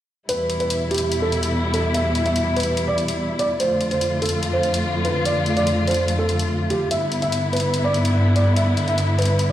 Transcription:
0.29 string section E2 B2 G3 E4, felt piano B4, closed hi-hat
0.50 closed hi-hat
0.60 felt piano B4, closed hi-hat
0.70 closed hi-hat
0.91 felt piano G4, closed hi-hat
0.94 closed hi-hat
0.98 closed hi-hat
1.12 closed hi-hat
1.22 felt piano A4
1.32 closed hi-hat
1.43 closed hi-hat
1.74 felt piano A4, closed hi-hat
1.94 felt piano E5, closed hi-hat
2.15 closed hi-hat
2.26 felt piano E5, closed hi-hat
2.36 closed hi-hat
2.56 felt piano B4, closed hi-hat
2.60 closed hi-hat
2.63 closed hi-hat
2.77 closed hi-hat
2.88 felt piano D5
2.98 closed hi-hat
3.08 closed hi-hat
3.39 felt piano D5, closed hi-hat
3.60 string section F2 D3 A3 F4, felt piano C5, closed hi-hat
3.81 closed hi-hat
3.91 felt piano C5, closed hi-hat
4.01 closed hi-hat
4.22 felt piano A4, closed hi-hat
4.26 closed hi-hat
4.29 closed hi-hat
4.43 closed hi-hat
4.53 felt piano C5
4.63 closed hi-hat
4.74 closed hi-hat
5.05 felt piano B4, closed hi-hat
5.25 felt piano D5, closed hi-hat
5.46 closed hi-hat
5.57 felt piano D5, closed hi-hat
5.67 closed hi-hat
5.87 felt piano C5, closed hi-hat
5.91 closed hi-hat
5.94 closed hi-hat
6.08 closed hi-hat
6.19 felt piano A4
6.29 closed hi-hat
6.39 closed hi-hat
6.70 felt piano G4, closed hi-hat
6.91 string section G2 D3 B3 E4, felt piano E5, closed hi-hat
7.12 closed hi-hat
7.22 felt piano E5, closed hi-hat
7.32 closed hi-hat
7.53 felt piano B4, closed hi-hat
7.57 closed hi-hat
7.60 closed hi-hat
7.74 closed hi-hat
7.84 felt piano D5
7.94 closed hi-hat
8.05 closed hi-hat
8.36 felt piano D5, closed hi-hat
8.56 felt piano E5, closed hi-hat
8.77 closed hi-hat
8.88 felt piano E5, closed hi-hat
8.98 closed hi-hat
9.18 felt piano B4, closed hi-hat
9.22 closed hi-hat
9.25 closed hi-hat
9.39 closed hi-hat

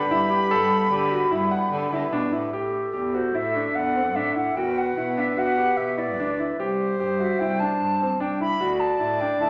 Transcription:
Already playing: harmonium D3 G3 B3, clarinet G4, flute B5
0.10 cello G2, grand piano E4
0.30 grand piano G4
0.51 cello G2, grand piano A4
0.90 cello D3, grand piano G4
1.11 grand piano F#4
1.31 cello G2, grand piano E4
1.51 grand piano F#5
1.71 cello D3
1.91 cello D3, grand piano E4
2.12 cello B2, grand piano D4
2.32 cello A2, grand piano E4
2.53 cello A2, grand piano G4, clarinet A4
2.93 cello E2, grand piano G4
3.13 grand piano F#4, flute C5
3.34 cello A2, grand piano E4, flute E5
3.55 grand piano D4
3.75 cello E2, flute F#5
3.96 grand piano C4
4.15 cello A2, grand piano D4, flute E5
4.35 grand piano E4, flute F#5
4.55 cello E2, grand piano F#4, clarinet B4, flute G5
4.78 flute F#5
4.96 cello B2, grand piano E4
5.17 grand piano D4, flute E5
5.37 cello E2, grand piano F#4, flute F#5
5.58 grand piano G4
5.77 cello B2, flute E5
5.98 grand piano E4, flute D5
6.19 cello D2, grand piano D4
6.40 grand piano E4
6.59 cello C2, grand piano G4, clarinet C5
6.99 cello G2, grand piano G4
7.19 grand piano F#4, flute E5
7.39 cello C2, grand piano E4, flute G5
7.59 grand piano D4, flute A5
7.79 cello G2
8.02 grand piano C4
8.20 cello C2, grand piano D4, flute G5
8.41 grand piano E4, flute B5
8.60 cello D2, grand piano F#4, clarinet D5
8.80 flute A5
9.00 cello A2, grand piano E4
9.20 grand piano D4, flute G5
9.39 cello D2, grand piano E4, flute A5

